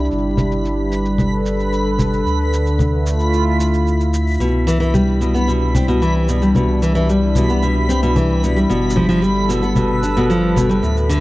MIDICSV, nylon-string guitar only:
0, 0, Header, 1, 2, 480
1, 0, Start_track
1, 0, Key_signature, 0, "major"
1, 0, Tempo, 535714
1, 107, Time_signature, 4, 2, 24, 8
1, 10037, End_track
2, 0, Start_track
2, 0, Title_t, "Nylon-string guitar"
2, 0, Program_c, 0, 24
2, 3945, Note_on_c, 0, 47, 61
2, 4174, Note_off_c, 0, 47, 0
2, 4184, Note_on_c, 0, 52, 78
2, 4291, Note_off_c, 0, 52, 0
2, 4302, Note_on_c, 0, 52, 76
2, 4412, Note_off_c, 0, 52, 0
2, 4425, Note_on_c, 0, 55, 73
2, 4654, Note_off_c, 0, 55, 0
2, 4666, Note_on_c, 0, 47, 63
2, 4774, Note_off_c, 0, 47, 0
2, 4788, Note_on_c, 0, 59, 65
2, 4901, Note_off_c, 0, 59, 0
2, 4908, Note_on_c, 0, 47, 67
2, 5135, Note_off_c, 0, 47, 0
2, 5151, Note_on_c, 0, 60, 66
2, 5257, Note_off_c, 0, 60, 0
2, 5271, Note_on_c, 0, 47, 78
2, 5376, Note_off_c, 0, 47, 0
2, 5393, Note_on_c, 0, 52, 76
2, 5617, Note_off_c, 0, 52, 0
2, 5636, Note_on_c, 0, 47, 59
2, 5739, Note_off_c, 0, 47, 0
2, 5752, Note_on_c, 0, 55, 64
2, 5863, Note_off_c, 0, 55, 0
2, 5874, Note_on_c, 0, 47, 66
2, 6098, Note_off_c, 0, 47, 0
2, 6113, Note_on_c, 0, 52, 77
2, 6217, Note_off_c, 0, 52, 0
2, 6228, Note_on_c, 0, 52, 83
2, 6335, Note_off_c, 0, 52, 0
2, 6356, Note_on_c, 0, 55, 70
2, 6579, Note_off_c, 0, 55, 0
2, 6598, Note_on_c, 0, 47, 59
2, 6700, Note_off_c, 0, 47, 0
2, 6718, Note_on_c, 0, 59, 58
2, 6826, Note_off_c, 0, 59, 0
2, 6832, Note_on_c, 0, 47, 69
2, 7057, Note_off_c, 0, 47, 0
2, 7069, Note_on_c, 0, 60, 63
2, 7175, Note_off_c, 0, 60, 0
2, 7194, Note_on_c, 0, 47, 88
2, 7298, Note_off_c, 0, 47, 0
2, 7312, Note_on_c, 0, 52, 83
2, 7537, Note_off_c, 0, 52, 0
2, 7560, Note_on_c, 0, 47, 64
2, 7661, Note_off_c, 0, 47, 0
2, 7674, Note_on_c, 0, 55, 60
2, 7784, Note_off_c, 0, 55, 0
2, 7791, Note_on_c, 0, 47, 66
2, 8017, Note_off_c, 0, 47, 0
2, 8026, Note_on_c, 0, 53, 80
2, 8131, Note_off_c, 0, 53, 0
2, 8142, Note_on_c, 0, 53, 87
2, 8252, Note_off_c, 0, 53, 0
2, 8262, Note_on_c, 0, 55, 75
2, 8492, Note_off_c, 0, 55, 0
2, 8503, Note_on_c, 0, 47, 67
2, 8613, Note_off_c, 0, 47, 0
2, 8625, Note_on_c, 0, 59, 65
2, 8740, Note_off_c, 0, 59, 0
2, 8747, Note_on_c, 0, 47, 68
2, 8975, Note_off_c, 0, 47, 0
2, 8988, Note_on_c, 0, 62, 66
2, 9095, Note_off_c, 0, 62, 0
2, 9110, Note_on_c, 0, 47, 91
2, 9216, Note_off_c, 0, 47, 0
2, 9226, Note_on_c, 0, 53, 84
2, 9454, Note_off_c, 0, 53, 0
2, 9463, Note_on_c, 0, 47, 64
2, 9573, Note_off_c, 0, 47, 0
2, 9581, Note_on_c, 0, 55, 61
2, 9698, Note_off_c, 0, 55, 0
2, 9700, Note_on_c, 0, 45, 62
2, 9931, Note_off_c, 0, 45, 0
2, 9940, Note_on_c, 0, 50, 82
2, 10037, Note_off_c, 0, 50, 0
2, 10037, End_track
0, 0, End_of_file